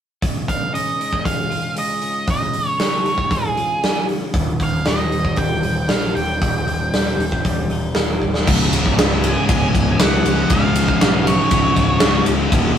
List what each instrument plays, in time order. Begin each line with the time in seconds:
0.22 clean electric guitar C#2, kick, open hi-hat
0.48 lead electric guitar F5, kick, open hi-hat
0.74 clean electric guitar C#3, lead electric guitar D#5, open hi-hat
1.00 clean electric guitar G#2, open hi-hat
1.13 kick
1.25 clean electric guitar C#3, lead electric guitar F5, kick, open hi-hat
1.50 clean electric guitar F4, open hi-hat
1.76 clean electric guitar G#3, lead electric guitar D#5, open hi-hat
2.02 clean electric guitar C#3, open hi-hat
2.28 clean electric guitar C#2, lead electric guitar D#5, kick, open hi-hat
2.54 open hi-hat
2.79 clean electric guitar C#3, lead electric guitar C#5, snare, open hi-hat
3.05 clean electric guitar G#2, open hi-hat
3.18 kick
3.31 clean electric guitar C#3, lead electric guitar G#4, kick, open hi-hat
3.57 clean electric guitar F4, open hi-hat
3.83 clean electric guitar G#3, snare, open hi-hat
4.08 clean electric guitar C#3, open hi-hat
4.34 picked electric bass D#1, clean electric guitar D#2, kick, open hi-hat
4.60 lead electric guitar F5, kick, open hi-hat
4.84 picked electric bass D#1, clean electric guitar G3, snare, open hi-hat
4.88 lead electric guitar D#5
5.12 clean electric guitar D#3, open hi-hat
5.25 kick
5.36 picked electric bass D#1, clean electric guitar G3, lead electric guitar G5, kick, open hi-hat
5.62 picked electric bass D#1, clean electric guitar D#4, open hi-hat
5.88 picked electric bass A#1, clean electric guitar A#3, lead electric guitar F5, snare, open hi-hat
6.15 picked electric bass D#1, clean electric guitar G3, lead electric guitar G5, open hi-hat
6.42 picked electric bass D#1, clean electric guitar D#2, kick, open hi-hat
6.65 picked electric bass D#1, open hi-hat
6.92 picked electric bass D#1, clean electric guitar G3, snare, open hi-hat
7.17 picked electric bass D#1, clean electric guitar D#3, open hi-hat
7.32 kick
7.45 picked electric bass D#1, clean electric guitar G3, kick, open hi-hat
7.69 picked electric bass D#1, clean electric guitar D#4, open hi-hat
7.95 picked electric bass D#1, clean electric guitar A#3, snare, open hi-hat
8.22 clean electric guitar G3, kick
8.34 snare
8.46 picked electric bass C#1, overdriven electric guitar C#2 G#2 C#3, kick, crash
8.71 picked electric bass C#1, ride
8.86 kick, snare
8.97 picked electric bass C#2, snare, ride
9.10 snare
9.24 lead electric guitar G#5, ride
9.49 picked electric bass C#1, lead electric guitar G#5, kick, ride
9.74 picked electric bass C#1, kick, ride
10.00 picked electric bass C#1, lead electric guitar F#5, snare, ride
10.24 picked electric bass C#1, overdriven electric guitar C#2 G#2 C#3, ride
10.48 picked electric bass C#1, overdriven electric guitar C#2 G#2 C#3, kick, ride
10.53 lead electric guitar F5
10.75 ride
10.88 kick
11.01 picked electric bass B1, snare, ride
11.27 lead electric guitar C#5, ride
11.51 picked electric bass C#1, kick, ride
11.76 picked electric bass C#1, kick, ride
12.00 picked electric bass C#1, snare, ride
12.26 picked electric bass C#1, overdriven electric guitar C#2 G#2 C#3, ride
12.51 picked electric bass D#1, overdriven electric guitar D#2 A#2 D#3, kick, ride